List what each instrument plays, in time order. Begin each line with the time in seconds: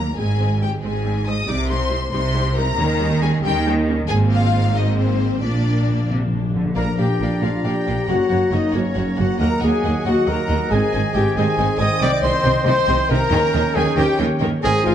Already playing: violin section A#4 A#5
0.16 double bass section G#1, cello section G#2, viola section G#3 C4, violin section G#4 G#5
0.40 viola section G#3 C4
0.61 viola section G#3 C4, violin section G4 G5
0.80 double bass section G#1, cello section G#2, viola section G#3 C4, violin section G#4 G#5
1.05 viola section G#3 C4
1.26 viola section G#3 C4, violin section D#5 D#6
1.47 double bass section C2, cello section C3, viola section G3 D#4, violin section D5 D6
1.69 viola section G3 D#4, violin section C5 C6
1.90 viola section G3 D#4
2.12 double bass section C2, cello section C3, viola section G3 D#4, violin section C5 C6
2.34 viola section G3 D#4
2.55 viola section G3 D#4, violin section A#4 A#5
2.78 double bass section D#2, cello section D#3, viola section G3 C#4
3.00 viola section G3 C#4
3.21 viola section G3 C#4, violin section G#4 G#5
3.42 double bass section D#2, cello section D#3, viola section G3 C#4, violin section G4 G5
3.66 viola section G3 C#4
3.88 viola section G3 C#4
4.08 double bass section G#1, cello section G#2, viola section A#3 C4, violin section G#4 G#5
4.29 violin section F4 F5
4.74 viola section A#3 C4, violin section D#4 D#5
4.97 violin section C4 C5
5.42 double bass section A#1, cello section A#2, timpani A#2, viola section A#3 D4, violin section D4 D5
5.51 timpani A#2
5.66 timpani A#2
5.75 timpani A#2
5.83 timpani A#2
5.90 timpani A#2
5.96 timpani A#2
6.04 timpani A#2
6.10 timpani A#2, cello section C3
6.18 timpani A#2
6.26 timpani A#2
6.33 cello section A#2, timpani A#2
6.42 timpani A#2
6.50 timpani A#2
6.55 timpani A#2, cello section D3
6.64 timpani A#2
6.75 double bass section A#1, timpani A#2, cello section A#2, trombone section F3 D4, viola section A#3 D4, trumpet A#4, french horn section A#4, violin section D5 F5 A#5, clarinet D5, flute A#5, oboe A#5
6.97 double bass section A#1, cello section A#2, viola section A#3 D4, trumpet G4, french horn section G4, violin section D5 F5 G5, flute G5
7.20 double bass section A#1, cello section A#2, viola section A#3 D4, violin section D5 F5
7.42 double bass section A#1, cello section A#2, viola section A#3 D4, trumpet F4, french horn section F4, violin section D5 F5, flute F5
7.64 double bass section A#1, cello section A#2, viola section A#3 D4, trumpet G4, french horn section G4, violin section D5 F5 G5, flute G5
7.86 double bass section A#1, cello section A#2, viola section A#3 D4, violin section D5 F5
8.08 double bass section F#1, cello section F#2, trombone section F#3 A#3, viola section A#3 F#4, trumpet F#4, french horn section F#4, violin section C#5 F#5, clarinet C#5, flute F#5
8.29 double bass section F#1, cello section F#2, viola section A#3 F#4, violin section C#5 F#5
8.51 double bass section F#1, cello section F#2, viola section A#3 F#4, trumpet D#4, french horn section D#4, violin section C#5 D#5 F#5, flute D#5
8.72 double bass section F#1, cello section F#2, viola section A#3 F#4, french horn section C#4, trumpet C#4, violin section C#5 F#5, flute C#5
8.95 double bass section F#1, cello section F#2, viola section A#3 F#4, violin section C#5 F#5
9.16 double bass section F#1, cello section F#2, viola section A#3 F#4, trumpet F#4, french horn section F#4, violin section C#5 F#5, flute F#5
9.38 cello section D#2, double bass section D#2, viola section A#3 F#4, trumpet A#4, french horn section A#4, violin section D#5 F#5 A#5, clarinet D#5, oboe F#5, flute A#5
9.59 cello section D#2, double bass section D#2, viola section A#3, trumpet G#4, violin section D#5 F#5 G#5, flute G#5
9.64 viola section F#4, french horn section G#4
9.83 cello section D#2, double bass section D#2, viola section A#3 F#4, violin section D#5 F#5
10.05 cello section D#2, double bass section D#2, viola section A#3 F#4, trumpet F#4, french horn section F#4, violin section D#5 F#5, flute F#5
10.26 cello section D#2, double bass section D#2, trumpet A#4, french horn section A#4, violin section D#5 F#5 A#5, flute A#5
10.30 viola section A#3 F#4
10.48 cello section D#2, double bass section D#2, viola section A#3 F#4, violin section D#5 F#5
10.70 double bass section G#1, cello section G#2, trombone section D#3 C4, viola section C4 D#4, french horn section G#4, trumpet G#4, violin section D#5 G#5, flute G#5, oboe G#5
10.92 double bass section G#1, cello section G#2, viola section C4 D#4, violin section D#5 G#5
11.14 double bass section G#1, cello section G#2, viola section C4 D#4, trumpet G4, french horn section G4, violin section D#5 G5 G#5, flute G5
11.36 double bass section G#1, cello section G#2, viola section C4 D#4, french horn section G#4, trumpet G#4, violin section D#5 G#5, flute G#5
11.58 double bass section G#1, cello section G#2, viola section C4 D#4, violin section D#5 G#5
11.79 double bass section G#1, cello section G#2, viola section C4 D#4, violin section D#5 G#5 D#6, trumpet D#5, french horn section D#5, flute D#6
12.00 double bass section C2, cello section C3, viola section C4 D#4, french horn section D5, trumpet D5, clarinet D#5, violin section D#5 G5 D6, oboe G5, flute D6
12.22 double bass section C2, cello section C3, viola section C4 D#4, french horn section C5, trumpet C5, violin section D#5 G5 C6, flute C6
12.44 double bass section C2, cello section C3, viola section C4 D#4, violin section D#5 G5
12.64 double bass section C2, cello section C3, viola section C4 D#4, french horn section C5, trumpet C5, violin section D#5 G5 C6, flute C6
12.88 double bass section C2, cello section C3, viola section C4 D#4, violin section D#5 G5
13.08 double bass section C2, cello section C3, viola section C4 D#4, french horn section A#4, trumpet A#4, violin section D#5 G5 A#5, flute A#5
13.30 double bass section D#2, trombone section D#3 C#4, cello section D#3, viola section C#4 A#4, clarinet C#5, violin section D#5 G5
13.53 double bass section D#2, cello section D#3, viola section C#4 A#4, violin section D#5 G5
13.74 double bass section D#2, cello section D#3, viola section C#4 A#4, french horn section G#4, trumpet G#4, violin section D#5 G5 G#5, flute G#5
13.96 double bass section D#2, cello section D#3, viola section C#4 A#4, french horn section G4, trumpet G4, violin section D#5 G5, flute G5
14.19 double bass section D#2, cello section D#3, viola section C#4 A#4, violin section D#5 G5
14.40 double bass section D#2, cello section D#3, viola section C#4 A#4, violin section D#5 G5
14.62 double bass section G#1, cello section G#2, trombone section D#3 C4, viola section C4 A#4, french horn section G#4, trumpet G#4, clarinet C5, violin section D#5 G#5, flute G#5, oboe A#5
14.84 double bass section G#1, cello section G#2, viola section C4 A#4, french horn section F4, trumpet F4, violin section D#5 F5 G#5, flute F5